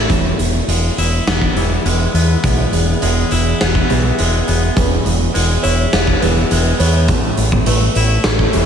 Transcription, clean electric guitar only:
0, 0, Header, 1, 2, 480
1, 0, Start_track
1, 0, Key_signature, 4, "major"
1, 0, Tempo, 582524
1, 79, Time_signature, 4, 2, 24, 8
1, 7133, End_track
2, 0, Start_track
2, 0, Title_t, "Clean electric guitar"
2, 0, Program_c, 0, 27
2, 0, Note_on_c, 0, 52, 61
2, 83, Note_off_c, 0, 52, 0
2, 86, Note_on_c, 0, 40, 59
2, 569, Note_on_c, 0, 56, 55
2, 812, Note_on_c, 0, 64, 58
2, 1049, Note_on_c, 0, 59, 58
2, 1293, Note_on_c, 0, 52, 56
2, 1527, Note_off_c, 0, 56, 0
2, 1530, Note_on_c, 0, 56, 58
2, 1768, Note_off_c, 0, 59, 0
2, 1771, Note_on_c, 0, 59, 57
2, 2007, Note_off_c, 0, 40, 0
2, 2010, Note_on_c, 0, 40, 64
2, 2487, Note_off_c, 0, 56, 0
2, 2491, Note_on_c, 0, 56, 59
2, 2730, Note_off_c, 0, 64, 0
2, 2733, Note_on_c, 0, 64, 56
2, 2972, Note_off_c, 0, 59, 0
2, 2975, Note_on_c, 0, 59, 61
2, 3207, Note_off_c, 0, 52, 0
2, 3209, Note_off_c, 0, 40, 0
2, 3210, Note_on_c, 0, 52, 63
2, 3446, Note_off_c, 0, 56, 0
2, 3456, Note_on_c, 0, 56, 60
2, 3681, Note_off_c, 0, 59, 0
2, 3690, Note_on_c, 0, 59, 58
2, 3928, Note_off_c, 0, 59, 0
2, 3931, Note_off_c, 0, 56, 0
2, 3934, Note_on_c, 0, 40, 59
2, 4403, Note_on_c, 0, 56, 64
2, 4639, Note_off_c, 0, 64, 0
2, 4642, Note_on_c, 0, 64, 68
2, 4886, Note_on_c, 0, 59, 66
2, 5125, Note_off_c, 0, 52, 0
2, 5128, Note_off_c, 0, 40, 0
2, 5128, Note_on_c, 0, 52, 63
2, 5357, Note_off_c, 0, 56, 0
2, 5367, Note_on_c, 0, 56, 62
2, 5587, Note_off_c, 0, 59, 0
2, 5597, Note_on_c, 0, 59, 59
2, 5839, Note_off_c, 0, 59, 0
2, 5840, Note_on_c, 0, 45, 59
2, 5844, Note_off_c, 0, 56, 0
2, 6322, Note_on_c, 0, 57, 61
2, 6562, Note_off_c, 0, 64, 0
2, 6566, Note_on_c, 0, 64, 63
2, 6801, Note_on_c, 0, 61, 62
2, 7035, Note_off_c, 0, 52, 0
2, 7037, Note_off_c, 0, 45, 0
2, 7039, Note_on_c, 0, 52, 63
2, 7133, Note_off_c, 0, 52, 0
2, 7133, Note_off_c, 0, 57, 0
2, 7133, Note_off_c, 0, 61, 0
2, 7133, Note_off_c, 0, 64, 0
2, 7133, End_track
0, 0, End_of_file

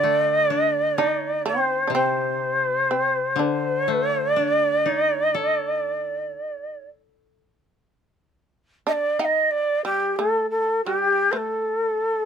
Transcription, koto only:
0, 0, Header, 1, 2, 480
1, 0, Start_track
1, 0, Tempo, 964630
1, 17, Time_signature, 4, 2, 24, 8
1, 2417, Tempo, 1000000
1, 4817, Tempo, 974026
1, 5997, End_track
2, 0, Start_track
2, 0, Title_t, "Koto"
2, 0, Program_c, 0, 107
2, 0, Note_on_c, 0, 50, 52
2, 17, Note_on_c, 0, 57, 36
2, 250, Note_on_c, 0, 62, 36
2, 487, Note_on_c, 0, 63, 39
2, 945, Note_on_c, 0, 48, 50
2, 966, Note_off_c, 0, 57, 0
2, 1198, Note_off_c, 0, 50, 0
2, 1201, Note_off_c, 0, 62, 0
2, 1442, Note_off_c, 0, 63, 0
2, 1670, Note_on_c, 0, 50, 45
2, 1676, Note_off_c, 0, 48, 0
2, 1930, Note_on_c, 0, 57, 37
2, 2171, Note_on_c, 0, 62, 36
2, 2416, Note_on_c, 0, 63, 35
2, 2651, Note_on_c, 0, 69, 37
2, 2891, Note_off_c, 0, 57, 0
2, 3123, Note_off_c, 0, 50, 0
2, 3131, Note_off_c, 0, 62, 0
2, 3375, Note_off_c, 0, 63, 0
2, 3618, Note_off_c, 0, 69, 0
2, 5997, End_track
0, 0, End_of_file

